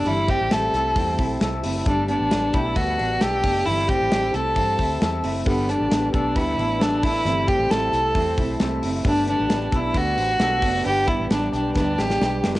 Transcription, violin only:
\new Staff \with { instrumentName = "Violin" } { \time 4/4 \key g \major \tempo 4 = 133 e'8 g'8 a'2 r4 | d'8 d'4 e'8 fis'4 g'4 | e'8 g'4 a'2 r8 | b8 d'4 d'8 e'4 d'8 e'8~ |
e'8 g'8 a'2 r4 | d'8 d'4 e'8 fis'2 | g'8 e'8 d'8 d'8 d'8 g'4 r8 | }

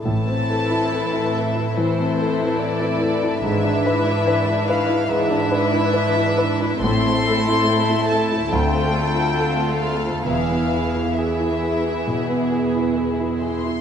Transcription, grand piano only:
\new Staff \with { instrumentName = "Grand piano" } { \time 4/4 \key a \minor \tempo 4 = 70 a,16 c'16 a'16 e'16 a'16 e'16 a'16 e'16 e16 c'16 a'16 e'16 a'16 e'16 a'16 e'16 | gis,16 d'16 b'16 e'16 b'16 e'16 b'16 e'16 gis,16 d'16 b'16 e'16 b'16 e'16 b'16 e'16 | a,16 c'16 a'16 e'16 a'16 e'16 a'16 e'16 d,16 c'16 a'16 f'16 a'16 f'16 a'16 f'16 | e,16 b16 gis'16 e'16 gis'16 e'16 gis'16 e'16 b,16 b16 gis'16 e'16 gis'16 e'16 gis'16 e'16 | }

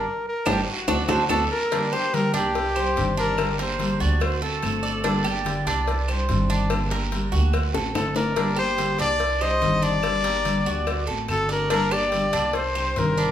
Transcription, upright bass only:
\new Staff \with { instrumentName = "Upright bass" } { \clef bass \time 4/4 \key d \phrygian \tempo 4 = 144 r4 g,,8 r8 d,8 d,8 d,8 r8 | \key g \minor r4. c,4. g,,4~ | g,,4. d,4. g,,4~ | g,,4. c,4. g,,4~ |
g,,4. d,4 a,,8 g,,4~ | g,,4. c,4. g,,4~ | g,,4. d,4 a,,8 g,,4~ | g,,4. c,4. g,,4 | }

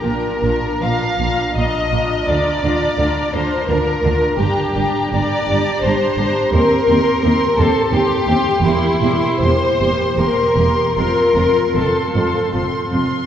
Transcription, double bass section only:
\new Staff \with { instrumentName = "Double bass section" } { \clef bass \time 3/4 \key bes \major \tempo 4 = 83 bes,,8 bes,,8 bes,,8 bes,,8 bes,,8 bes,,8 | d,8 d,8 d,8 d,8 d,8 d,8 | \key c \dorian g,,8 g,,8 g,,8 g,,8 g,,8 g,,8 | ees,8 ees,8 ees,8 ees,8 ees,8 ees,8 |
e,,8 e,,8 e,,8 e,,8 e,,8 e,,8 | f,,8 f,,8 f,,8 f,,8 f,,8 f,,8 | }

